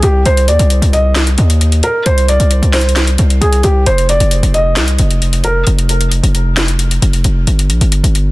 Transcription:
0.03 808-style bass C2, felt piano G4, closed hi-hat
0.26 808-style bass C2, felt piano C5, closed hi-hat
0.37 closed hi-hat
0.48 808-style bass D#2, felt piano D5, closed hi-hat
0.59 808-style bass C2, closed hi-hat
0.70 closed hi-hat
0.82 808-style bass C2, closed hi-hat
0.93 felt piano D#5, closed hi-hat
1.16 snare, clap, closed hi-hat
1.27 closed hi-hat
1.38 808-style bass D#2, closed hi-hat
1.50 closed hi-hat
1.61 closed hi-hat
1.72 closed hi-hat
1.83 felt piano A#4, closed hi-hat
2.06 808-style bass C2, felt piano C5, closed hi-hat
2.18 closed hi-hat
2.28 felt piano D5, closed hi-hat
2.40 808-style bass C2, closed hi-hat
2.51 closed hi-hat
2.62 808-style bass C2, closed hi-hat
2.74 felt piano C5, snare, clap, closed hi-hat, open hi-hat
2.81 closed hi-hat
2.89 closed hi-hat
2.96 snare, clap, closed hi-hat
3.07 closed hi-hat
3.18 808-style bass C2, closed hi-hat
3.30 closed hi-hat
3.41 808-style bass C2, felt piano G#4, closed hi-hat
3.53 closed hi-hat
3.63 808-style bass C2, felt piano G4, closed hi-hat
3.86 808-style bass F1, felt piano C5, closed hi-hat
3.98 closed hi-hat
4.09 felt piano D5, closed hi-hat
4.20 808-style bass F1, closed hi-hat
4.31 closed hi-hat
4.43 808-style bass F1, closed hi-hat
4.54 felt piano D#5, closed hi-hat
4.77 808-style bass C2, snare, clap, closed hi-hat
4.88 closed hi-hat
4.99 808-style bass F1, closed hi-hat
5.11 closed hi-hat
5.22 closed hi-hat
5.33 closed hi-hat
5.44 felt piano A#4, closed hi-hat
5.67 808-style bass F1, closed hi-hat
5.79 closed hi-hat
5.89 closed hi-hat
6.01 closed hi-hat
6.12 closed hi-hat
6.23 808-style bass F1, closed hi-hat
6.35 closed hi-hat
6.57 snare, clap, closed hi-hat
6.68 closed hi-hat
6.79 closed hi-hat
6.91 closed hi-hat
7.02 808-style bass F1, closed hi-hat
7.13 closed hi-hat
7.24 808-style bass F1, closed hi-hat
7.47 808-style bass G1, closed hi-hat
7.59 closed hi-hat
7.70 808-style bass A#1, closed hi-hat
7.81 808-style bass G1, closed hi-hat
7.92 closed hi-hat
8.04 808-style bass G1, closed hi-hat
8.15 closed hi-hat

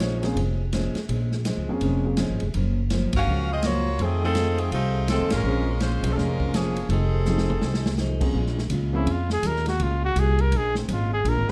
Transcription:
Already playing: upright bass A#1, saxophone section A#3 D#4 C#5
0.00 steel-string acoustic guitar A#2 F3 G#3 C#4, snare, hi-hat pedal, ride
0.22 grand piano F3 A#3 C4 C#4 G#4, snare, ride
0.36 upright bass F1, steel-string acoustic guitar A#2 F3 G#3 C#4, ride
0.72 steel-string acoustic guitar A#2 F3 G#3 C#4, snare, hi-hat pedal, ride
0.95 muted upright bass stroke, snare, ride
1.09 upright bass A#1, steel-string acoustic guitar A#2 F3 G#3 C#4, ride
1.32 snare
1.45 steel-string acoustic guitar A#2 F3 G#3 C#4, snare, hi-hat pedal, ride
1.57 upright bass C#2
1.69 upright bass F2, grand piano F3 A#3 C4 C#4 G#4
1.81 upright bass F1, steel-string acoustic guitar A#2 F3 G#3 C#4, ride
2.05 grand piano F3 A#3 C4 C#4 G#4
2.17 steel-string acoustic guitar A#2 F3 G#3 C#4, snare, hi-hat pedal, ride
2.30 upright bass G#1
2.40 upright bass F1, ride
2.54 upright bass F#1, steel-string acoustic guitar F#2 F3 A#3 C#4, ride
2.90 steel-string acoustic guitar F#2 F3 A#3 C#4, snare, hi-hat pedal, ride
3.13 upright bass G1, saxophone section F#4, kick, ride
3.17 saxophone section C#4 A#4 F5
3.27 upright bass C#2, steel-string acoustic guitar F#2 F3 A#3 C#4
3.52 saxophone section C4 F4 G#4 D#5
3.62 steel-string acoustic guitar F#2 F3 A#3 C#4, saxophone section A#3 F4 F#4 C#5, snare, hi-hat pedal, ride
3.99 upright bass F2, saxophone section D#3 A3 C4 G#4, steel-string acoustic guitar F3 A3 D#4 G#4, ride
4.22 saxophone section D#3 C4 G#4 A4, grand piano F3 A3 C4 D#4 F4
4.35 steel-string acoustic guitar F3 A3 D#4 G#4, snare, hi-hat pedal, ride
4.58 saxophone section D#3 A3 C4 G#4, ride
4.72 upright bass C2, steel-string acoustic guitar F3 A3 D#4 G#4, saxophone section A3 C4 D#4 F4, ride
5.08 saxophone section D#3 G#3 C4 A4, grand piano F3 A3 C4 D#4 F4, steel-string acoustic guitar F3 A3 D#4 G#4, snare, hi-hat pedal, ride
5.20 upright bass D#2
5.30 upright bass A1, saxophone section G#3 C#4 F4 A#4, snare, ride
5.44 upright bass A#1, steel-string acoustic guitar A#2 F3 G#3 C#4, grand piano F3 A#3 C4 C#4 G#4
5.80 steel-string acoustic guitar A#2 F3 G#3 C#4, saxophone section G#3 C#4 F4 C5, snare, hi-hat pedal, ride
6.03 upright bass B1, grand piano F3 A#3 C#4 G#4 C5, ride
6.12 saxophone section A4
6.17 upright bass F1, steel-string acoustic guitar A#2 F3 G#3 C#4, saxophone section G#3 C#4 F4 A#4, snare
6.40 kick
6.53 steel-string acoustic guitar A#2 F3 G#3 C#4, saxophone section F3 A#3 C#4 G#4, snare, hi-hat pedal, ride
6.76 ride
6.89 upright bass F1, saxophone section D#3 C4 G#4 A4, steel-string acoustic guitar F3 A3 D#4 G#4, ride
7.25 steel-string acoustic guitar F3 A3 D#4 G#4, grand piano F3 A3 C4 D#4 G#4, snare, hi-hat pedal
7.38 snare
7.50 mid tom
7.62 upright bass C2, steel-string acoustic guitar F3 A3 D#4 G#4, snare
7.74 snare
7.86 snare
7.97 steel-string acoustic guitar F3 A3 D#4 G#4, snare, hi-hat pedal
8.20 grand piano F3 A#3 C4 C#4 G#4, kick, crash
8.34 upright bass A#1, steel-string acoustic guitar A#2 G#3 C#4 F4
8.46 snare
8.59 snare
8.70 upright bass C#2, steel-string acoustic guitar A#2 G#3 C#4 F4, hi-hat pedal, ride
8.93 grand piano F3 A#3 C4 C#4 G#4, trumpet E4
9.06 upright bass F2, steel-string acoustic guitar A#2 G#3 C#4 F4, ride
9.11 trumpet F4
9.30 trumpet G#4, snare
9.43 upright bass D#2, steel-string acoustic guitar A#2 G#3 C#4 F4, trumpet A#4, hi-hat pedal, ride
9.56 snare
9.66 trumpet F#4, snare, ride
9.80 upright bass C#2, steel-string acoustic guitar A#2 G#3 C#4 F4, trumpet F4, ride
10.05 trumpet F#4
10.16 upright bass C2, steel-string acoustic guitar A#2 G#3 C#4 F4, trumpet G#4, hi-hat pedal, ride
10.39 trumpet A#4, ride
10.52 upright bass A#1, steel-string acoustic guitar A#2 G#3 C#4 F4, ride
10.57 trumpet G#4
10.75 trumpet C4, snare
10.88 upright bass G#1, steel-string acoustic guitar A#2 G#3 C#4 F4, hi-hat pedal, ride
10.93 trumpet F4
11.14 trumpet G#4
11.25 upright bass A#1, steel-string acoustic guitar A#2 G#3 C#4 F4, ride
11.29 trumpet A#4
11.37 upright bass G#1
11.47 grand piano F3 A#3 C4 C#4, snare

